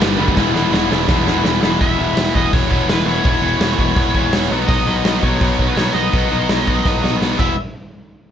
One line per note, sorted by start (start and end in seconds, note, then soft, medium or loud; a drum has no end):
0.00 0.17 G1 medium
0.00 0.17 G2 medium
0.00 0.17 D3 loud
0.00 0.18 G3 medium
0.00 0.19 B3 medium
0.00 0.19 D4 loud
0.00 snare loud
0.00 crash medium
0.18 0.35 F#1 medium
0.18 0.35 G2 medium
0.18 0.35 D3 medium
0.18 0.36 G3 loud
0.18 0.37 B3 loud
0.18 0.36 D4 medium
0.28 kick medium
0.34 0.53 E1 loud
0.34 0.51 E2 loud
0.34 0.51 B2 medium
0.34 0.52 E3 loud
0.34 0.52 G#3 loud
0.34 0.53 B3 loud
0.34 0.53 E4 loud
0.34 kick loud
0.34 snare medium
0.52 0.71 E1 medium
0.52 0.70 E2 medium
0.52 0.71 B2 loud
0.52 0.70 E3 loud
0.52 0.71 G#3 loud
0.52 0.71 B3 loud
0.52 0.71 E4 loud
0.52 snare medium
0.71 0.88 E1 medium
0.71 0.88 E2 medium
0.71 0.89 B2 medium
0.71 0.88 E3 medium
0.71 0.89 G#3 loud
0.71 0.89 B3 loud
0.71 0.89 E4 loud
0.71 snare medium
0.89 1.07 E1 loud
0.89 1.07 E2 medium
0.89 1.07 B2 medium
0.89 1.05 E3 medium
0.89 1.06 G#3 medium
0.89 1.06 B3 loud
0.89 1.06 E4 loud
0.89 snare medium
1.06 1.25 E1 loud
1.06 1.25 E2 loud
1.06 1.26 B2 loud
1.06 1.24 E3 medium
1.06 1.24 G#3 loud
1.06 1.24 B3 loud
1.06 1.25 E4 loud
1.06 kick loud
1.06 snare loud
1.25 1.43 E1 medium
1.25 1.43 E2 medium
1.25 1.44 B2 loud
1.25 1.42 E3 loud
1.25 1.42 G#3 medium
1.25 1.43 B3 medium
1.25 1.43 E4 loud
1.25 snare medium
1.43 1.61 E1 loud
1.43 1.60 E2 medium
1.43 1.61 B2 loud
1.43 1.61 E3 medium
1.43 1.61 G#3 medium
1.43 1.62 B3 medium
1.43 1.62 E4 medium
1.43 snare loud
1.61 1.80 E1 medium
1.61 1.78 E2 medium
1.61 1.79 B2 medium
1.61 1.79 E3 medium
1.61 1.79 G#3 medium
1.61 1.79 B3 medium
1.61 1.80 E4 loud
1.61 snare medium
1.79 1.95 E1 medium
1.79 1.98 E2 medium
1.79 1.97 B2 loud
1.79 1.98 E3 loud
1.79 1.99 G#3 medium
1.79 2.00 B3 loud
1.79 2.00 E4 loud
1.79 2.34 E5 loud
1.79 kick loud
1.79 open hi-hat medium
1.98 2.13 E1 medium
1.98 2.16 E2 medium
1.98 2.16 B2 medium
1.98 2.16 E3 loud
1.98 2.16 G#3 medium
1.98 2.17 B3 medium
1.98 2.18 E4 medium
2.16 2.30 E1 medium
2.16 2.32 E2 medium
2.16 2.33 B2 medium
2.16 2.34 E3 medium
2.16 2.34 G#3 medium
2.16 2.36 B3 medium
2.16 2.36 E4 medium
2.16 snare loud
2.16 open hi-hat soft
2.34 2.49 E1 medium
2.34 2.52 E2 loud
2.34 2.52 B2 loud
2.34 2.53 E3 medium
2.34 2.53 G#3 medium
2.34 2.54 B3 loud
2.34 2.54 E4 loud
2.34 2.51 D#5 medium
2.34 kick medium
2.53 2.67 E1 medium
2.53 2.68 E2 medium
2.53 2.69 B2 medium
2.53 2.70 E3 medium
2.53 2.70 G#3 medium
2.53 2.72 B3 medium
2.53 2.71 E4 medium
2.53 2.86 C#5 medium
2.53 kick loud
2.53 open hi-hat medium
2.70 2.85 E1 medium
2.70 2.85 E2 medium
2.70 2.86 B2 loud
2.70 2.87 E3 medium
2.70 2.88 G#3 medium
2.70 2.89 B3 loud
2.70 2.89 E4 loud
2.70 kick medium
2.86 3.02 E1 medium
2.86 3.04 E2 medium
2.86 3.05 B2 medium
2.86 3.05 E3 medium
2.86 3.06 G#3 medium
2.86 3.07 B3 medium
2.86 3.07 E4 medium
2.86 3.06 B4 medium
2.86 snare loud
2.86 open hi-hat medium
3.05 3.20 E1 medium
3.05 3.22 E2 medium
3.05 3.23 B2 medium
3.05 3.23 E3 medium
3.05 3.24 G#3 medium
3.05 3.26 B3 medium
3.05 3.24 E4 medium
3.05 4.50 C#5 loud
3.23 3.39 E1 medium
3.23 3.41 E2 loud
3.23 3.41 B2 loud
3.23 3.41 E3 medium
3.23 3.42 G#3 medium
3.23 3.43 B3 loud
3.23 3.42 E4 loud
3.23 kick loud
3.23 open hi-hat medium
3.42 3.56 E1 medium
3.42 3.58 E2 medium
3.42 3.58 B2 medium
3.42 3.60 E3 medium
3.42 3.60 G#3 medium
3.42 3.62 B3 medium
3.42 3.62 E4 loud
3.59 3.74 E1 medium
3.59 3.76 E2 medium
3.59 3.77 B2 medium
3.59 3.78 E3 medium
3.59 3.79 G#3 medium
3.59 3.80 B3 medium
3.59 snare loud
3.59 open hi-hat medium
3.63 3.79 E4 medium
3.78 3.93 E1 medium
3.78 3.95 E2 medium
3.78 3.96 B2 loud
3.78 3.97 E3 loud
3.78 3.98 G#3 loud
3.78 3.99 B3 loud
3.78 3.98 E4 loud
3.78 kick medium
3.96 4.13 E2 medium
3.96 4.14 B2 medium
3.96 4.14 E3 medium
3.96 4.14 G#3 medium
3.96 4.15 B3 medium
3.96 4.15 E4 medium
3.96 kick loud
3.96 open hi-hat medium
4.14 4.29 E1 medium
4.14 4.30 E2 loud
4.14 4.31 B2 medium
4.14 4.32 E3 medium
4.14 4.32 G#3 medium
4.14 4.33 B3 loud
4.14 4.33 E4 loud
4.14 kick medium
4.31 4.47 E1 medium
4.31 4.48 E2 medium
4.31 4.49 B2 medium
4.31 4.49 E3 medium
4.31 4.50 G#3 medium
4.31 4.52 B3 medium
4.31 4.50 E4 medium
4.31 snare loud
4.31 open hi-hat medium
4.51 4.64 B1 medium
4.51 4.68 B2 loud
4.51 4.68 D#3 loud
4.51 4.70 F#3 loud
4.51 4.70 B3 loud
4.51 4.70 D#4 loud
4.67 4.82 B1 medium
4.67 4.86 B2 medium
4.67 4.87 D#3 medium
4.67 4.88 F#3 loud
4.67 4.88 B3 loud
4.67 4.89 D#4 loud
4.67 5.23 D#5 loud
4.67 kick loud
4.67 open hi-hat medium
4.87 5.00 B1 medium
4.87 5.04 B2 loud
4.87 5.04 D#3 medium
4.87 5.05 F#3 loud
4.87 5.06 B3 loud
4.87 5.06 D#4 loud
5.05 5.19 B1 medium
5.05 5.22 B2 medium
5.05 5.22 D#3 medium
5.05 5.23 F#3 medium
5.05 5.24 B3 medium
5.05 5.24 D#4 medium
5.05 snare loud
5.05 open hi-hat medium
5.23 5.37 B1 medium
5.23 5.41 B2 loud
5.23 5.41 D#3 medium
5.23 5.42 F#3 loud
5.23 5.43 B3 loud
5.23 5.43 D#4 loud
5.23 5.67 C#5 loud
5.23 kick medium
5.41 5.55 B1 medium
5.41 5.57 B2 medium
5.41 5.58 D#3 medium
5.41 5.58 F#3 medium
5.41 5.59 B3 medium
5.41 5.59 D#4 loud
5.41 kick loud
5.41 open hi-hat medium
5.58 5.73 B1 medium
5.58 5.76 B2 medium
5.58 5.76 D#3 medium
5.58 5.77 F#3 medium
5.58 5.78 B3 medium
5.58 5.77 D#4 loud
5.58 kick medium
5.67 5.75 B4 medium
5.76 5.90 B1 medium
5.76 5.94 B2 medium
5.76 5.95 D#3 medium
5.76 5.95 F#3 medium
5.76 5.97 B3 medium
5.76 5.96 D#4 medium
5.76 5.92 C#5 medium
5.76 snare loud
5.76 open hi-hat medium
5.92 6.08 B1 medium
5.92 6.12 B2 medium
5.92 7.15 D#5 medium
5.96 6.12 D#3 medium
5.96 6.13 F#3 medium
5.96 6.13 B3 medium
5.96 6.13 D#4 medium
6.13 6.27 B1 medium
6.13 6.29 B2 medium
6.13 6.30 D#3 medium
6.13 6.30 F#3 medium
6.13 6.31 B3 loud
6.13 6.31 D#4 loud
6.13 kick loud
6.13 open hi-hat soft
6.30 6.45 B1 medium
6.30 6.47 B2 medium
6.30 6.47 D#3 medium
6.30 6.48 F#3 medium
6.30 6.49 B3 medium
6.30 6.49 D#4 medium
6.48 6.63 B1 medium
6.48 6.65 B2 medium
6.48 6.66 D#3 medium
6.48 6.66 F#3 medium
6.48 6.67 B3 medium
6.48 6.67 D#4 medium
6.48 snare loud
6.48 open hi-hat medium
6.66 6.81 B1 medium
6.66 6.83 B2 medium
6.66 6.84 D#3 medium
6.66 6.85 F#3 medium
6.66 6.85 B3 loud
6.66 6.85 D#4 loud
6.66 kick medium
6.84 6.99 B1 medium
6.84 7.00 B2 medium
6.84 7.01 D#3 medium
6.84 7.01 F#3 medium
6.84 7.02 B3 medium
6.84 7.03 D#4 medium
6.84 kick loud
6.84 snare medium
7.01 7.17 B1 medium
7.01 7.19 B2 medium
7.01 7.20 D#3 medium
7.01 7.20 F#3 medium
7.01 7.21 B3 medium
7.01 7.21 D#4 medium
7.01 snare medium
7.20 7.35 B1 medium
7.20 7.38 B2 medium
7.20 7.38 D#3 medium
7.20 7.39 F#3 medium
7.20 7.38 B3 medium
7.20 7.39 D#4 medium
7.20 snare medium
7.38 7.55 E1 medium
7.38 7.52 E2 medium
7.38 7.53 B2 medium
7.38 7.53 E3 medium
7.38 7.53 G#3 medium
7.38 7.53 B3 medium
7.38 7.53 E4 medium
7.38 7.55 E5 medium
7.38 kick medium
7.38 crash medium